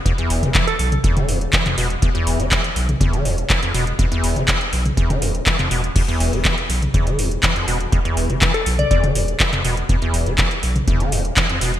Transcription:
<<
  \new Staff \with { instrumentName = "Synth pluck" } { \time 4/4 \key c \major \tempo 4 = 122 r4 r16 a'8 r2 r16 | r1 | r1 | r1 |
r4 r16 a'8 d''16 d''16 r4. r16 | r1 | }
  \new Staff \with { instrumentName = "Acid bass" } { \clef bass \time 4/4 \key c \major e,16 e,8 d16 e16 r8. e,16 d16 e,16 r16 e16 f,16 b,16 r16 | e,16 e,8 d16 e16 r8. e,16 d16 e,16 r16 e16 f,16 b,16 r16 | e,16 e,8 d16 e16 r8. e,16 d16 e,16 r16 e16 f,16 b,16 r16 | e,16 e,8 d16 e16 r8. e,16 d16 e,16 r16 e16 f,16 b,16 r16 |
e,16 e,8 d16 e16 r8. e,16 d16 e,16 r16 e16 f,16 b,16 r16 | e,16 e,8 d16 e16 r8. e,16 d16 e,16 r16 e16 f,16 b,16 r16 | }
  \new Staff \with { instrumentName = "Analog synth bass" } { \clef bass \time 4/4 \key c \major r8 e,,16 e,,16 r8 b,,16 r8 e,,16 e,,16 r8. e,,16 r16 | r8 e,,16 e,,16 r8 b,,16 r8 e,,16 e,,16 r8. e,,16 r16 | r8 e,,16 e,,16 r8 b,,16 r8 e,,16 e,,16 r8. e,,16 r16 | r8 e,,16 e,,16 r8 b,,16 r8 e,,16 e,,16 r8. e,,16 r16 |
r8 e,,16 e,,16 r8 b,,16 r8 e,,16 e,,16 r8. e,,16 r16 | r8 e,,16 e,,16 r8 b,,16 r8 e,,16 e,,16 r8. e,,16 r16 | }
  \new DrumStaff \with { instrumentName = "Drums" } \drummode { \time 4/4 <hh bd>16 hh16 hho16 <hh bd toml>16 <hc hh bd>16 hh16 hho16 <hh toml>16 <hh bd>16 <hh toml>16 hho16 hh16 <hc hh bd>16 <hc hh toml>16 hho16 hh16 | <hh bd>16 hh16 hho16 hh16 <hc hh bd>16 hh16 hho16 <hh toml>16 <hh bd toml>16 hh16 hho16 hh16 <hc hh bd>16 hh16 hho16 hh16 | <hh bd>16 hh16 hho16 <hh bd toml>16 <hc hh bd>16 hh16 hho16 <hh toml>16 <hh bd>16 <hh toml>16 hho16 hh16 <hc hh bd>16 <hc hh toml>16 hho16 hh16 | <cymc hh bd>16 hh16 hho16 hh16 <hc hh bd>16 hh16 hho16 <hh toml>16 <hh bd toml>16 hh16 hho16 hh16 <hc hh bd>16 hh16 hho16 hh16 |
<hh bd>16 hh16 hho16 <hh bd toml>16 <hc hh bd>16 hh16 hho16 <hh toml>16 <hh bd>16 <hh toml>16 hho16 hh16 <hc hh bd>16 <hc hh toml>16 hho16 hh16 | <hh bd>16 hh16 hho16 hh16 <hc hh bd>16 hh16 hho16 <hh toml>16 <hh bd toml>16 hh16 hho16 hh16 <hc hh bd>16 hh16 hho16 hh16 | }
>>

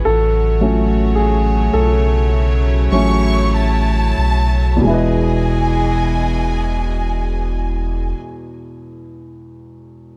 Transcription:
<<
  \new Staff \with { instrumentName = "Violin section" } { \time 4/4 \key e \major \tempo 4 = 45 r2 r8 cis'''8 a''4 | gis''1 | }
  \new Staff \with { instrumentName = "Upright piano" } { \time 4/4 \key e \major a'4 gis'8 a'4 r4. | r1 | }
  \new Staff \with { instrumentName = "Upright piano" } { \time 4/4 \key e \major r8 <fis a cis'>8 r4. <fis a cis'>8 r4 | <e, b, gis e' b' dis''>1 | }
  \new Staff \with { instrumentName = "String section" } { \time 4/4 \key e \major << { <cis fis a cis''>1 | <b, e gis gis' dis''>1 | } \\ { fis'2 e'2 | r1 | } >> }
  \new Staff \with { instrumentName = "Sub bass" } { \clef bass \time 4/4 \key e \major a,,4. b,,4 a,,4 b,,8 | e,,1 | }
>>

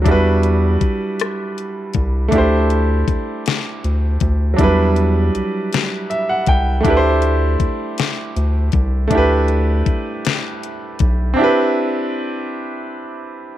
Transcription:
<<
  \new Staff \with { instrumentName = "Grand piano" } { \time 6/8 \key d \mixolydian \tempo 4. = 53 << { r2. | r2. | r2 e''16 fis''16 g''8 | r2. |
r2. | r2. | } \\ { <fis g d' e' fis' b'>2. | <a d' e' g' c''>2. | <fis g d' e' b'>2. | <a d' e' g' b' c''>2. |
<a d' e' g' b'>2. | <c' d' e' g' b'>2. | } >> }
  \new Staff \with { instrumentName = "Analog synth bass" } { \clef bass \time 6/8 \key d \mixolydian e,4 c,8 r4 c,8 | d,4 d,8 r8 d,8 d,8 | e,4 c,8 r4 c,8 | d,4 d,8 r8 d,8 c,8 |
d,4 b,,8 r4 b,,8 | r2. | }
  \new DrumStaff \with { instrumentName = "Drums" } \drummode { \time 6/8 <hh bd>8 hh8 <hh bd>8 <hh ss>8 hh8 <hh bd>8 | <hh bd>8 hh8 <hh bd>8 <hh sn>8 hh8 <hh bd>8 | <hh bd>8 hh8 hh8 <hh sn>8 hh8 <hh bd>8 | <hh bd>8 hh8 <hh bd>8 <hh sn>8 hh8 <hh bd>8 |
<hh bd>8 hh8 <hh bd>8 <hh sn>8 hh8 <hh bd>8 | r4. r4. | }
>>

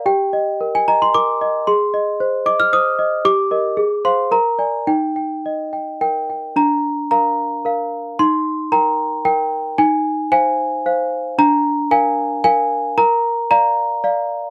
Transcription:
\new Staff \with { instrumentName = "Celesta" } { \time 3/4 \key ees \major \tempo 4 = 113 << { g''4~ g''16 aes''16 bes''16 c'''16 d'''4 | c'''4. d'''16 f'''16 ees'''4 | d'''4. c'''8 bes''4 | g''2 g''4 |
bes''4 bes''2 | c'''4 bes''4 g''4 | aes''4 aes''2 | bes''4 aes''4 aes''4 |
\key bes \major bes''4 bes''2 | } \\ { g'8 ees''8 bes'8 ees''8 bes'8 ees''8 | aes'8 ees''8 c''8 ees''8 c''8 ees''8 | g'8 <bes' ees''>8 aes'8 <c'' f''>8 bes'8 <d'' aes''>8 | ees'8 g''8 ees''8 g''8 bes'8 g''8 |
d'4 <bes' f''>4 <bes' f''>4 | ees'4 <bes' g''>4 bes'4 | ees'4 <c'' f''>4 <c'' f''>4 | d'4 <bes' f''>4 <bes' f''>4 |
bes'4 <d'' f''>4 <d'' f''>4 | } >> }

